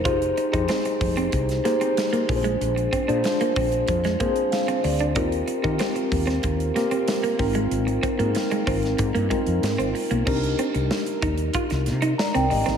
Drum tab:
CC |----------------|----------------|----------------|----------------|
HH |xxxxxxoxxxxxxxox|xxxxxxoxxxxxxxox|xxxxxxoxxxxxxxox|xxxxxxoxxxxxxxox|
SD |----o----oo-o---|----o----o--o---|----o--o--o-o---|----o--o----o---|
BD |o--o--o-o-----o-|--o---o-o-o-----|o--o--o-o-----o-|--o---o-o-o-----|

CC |x---------------|
HH |-xxx-xxxxxxx-xox|
SD |----o----oo-o--o|
BD |o-----o-o-------|